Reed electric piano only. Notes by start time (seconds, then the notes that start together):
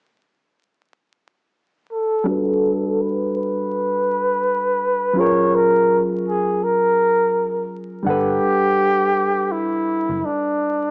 2.24 G3 D4 F#4
2.29 A4 B4
5.13 F#3 C#4 F4
5.19 G#4 A#4
8.03 G3 D4 F#5
8.09 A4 B4